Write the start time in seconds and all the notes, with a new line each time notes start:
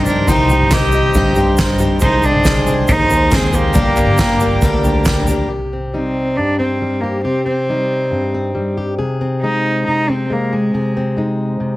Already playing: C2 G2 C3 G3 C4 D#4 G4 C5 C6
0.06 G3 C4 D4 D#4 G4 A#4 C5, floor tom, shaker
0.10 C4
0.27 C2 C3 D#3 G3 C4 D#4 G4 C5 A#5, kick, floor tom, shaker
0.49 G3 C4 D#4 G4, floor tom, shaker
0.60 floor tom
0.71 D#3 G3 C4 D#4 G4 C5 D#5, kick, snare, clap, shaker
0.92 G3 C4 D#4 G4 C5, shaker
1.14 G2 C3 D#3 G3 C4 D#4 G4, kick, floor tom, shaker
1.35 G2 G3 C4 D#4 G4 C5, shaker
1.39 C4 D#4
1.57 D#3 G3 C4 D#4 G4 C5, kick, snare, clap, shaker
1.79 G3 C4 D#4 G4 C5, floor tom, shaker
2.00 C2 C3 D#3 G#3 C4 D#4 G#4 C5 C6, kick, floor tom, shaker
2.23 G#3 C4 D4 D#4 G#4, floor tom, shaker
2.34 floor tom
2.44 D#3 G#3 C4 D#4 G#4 C5, kick, snare, clap, shaker
2.67 G#3 C4 D#4 G#4 C5, shaker
2.88 D#2 C3 D#3 G#3 C4 D#4 G#4 C5, kick, floor tom, shaker
3.09 D#2 G#3 C4 D#4 G#4 C5, shaker
3.31 D#3 G#3 C4 G#4 C5, kick, snare, clap, shaker
3.52 G#3 C4 D#4 G4 G#4 C5, floor tom, shaker
3.56 A#3
3.73 G1 G2 D3 G3 A#3 D4 G4 A#4 D5 A#5, kick, floor tom, shaker
3.95 G3 A#3 D4 G4 A#4, clap, floor tom, shaker
4.08 floor tom
4.18 G3 A#3 D4 G4 A#4, kick, snare, clap, shaker
4.40 G3 A#3 D4 F4 G4, shaker
4.62 D2 G2 D3 G3 A#3 D4 G4 A#4, kick, floor tom, shaker
4.84 D2 G3 A#3 D4 G4 A#4, floor tom, shaker
5.05 G3 A#3 D4 G4, kick, snare, clap, shaker
5.26 G3 A#3 D4 G4 A#4, floor tom, shaker
5.30 G3
5.48 C3 G4
5.73 C4
5.94 G3 C4 D#4
6.36 G2 D4
6.59 C4
6.82 G3
7.01 A#3 G4
7.24 C3 C4 G4
7.45 C4
7.69 G3 D#4
8.11 G2
8.34 C4
8.55 G3
8.78 G4
8.99 C3 G#4
9.21 C4
9.42 G#3 D#4
9.87 C3 D#4
10.09 C4
10.30 G#3 A#3
10.53 G#3 G#4
10.74 C3 G#4
10.97 C4
11.17 G#3 D#4
11.60 C3